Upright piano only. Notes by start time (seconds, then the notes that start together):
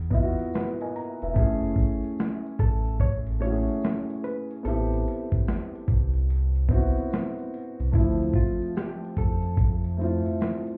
Already playing: B3 D#4 E4 G#4
0.10 B3 E4 D#5 E5
0.16 F4
0.23 F#4
0.55 F#4 B4 F#5
0.82 A#4 D#5 G#5
0.96 A#5
1.23 B4 E5
1.34 A3 C#4
1.38 E4 G#4
3.39 A3 C#4 E4
3.45 F#4
3.52 G#4
4.63 B3 C4 E4
4.69 G4
6.68 B3 C4 E4
6.74 F#4
7.92 A3 C4 E5
7.97 F3
9.97 A3 C4 E4
10.03 F4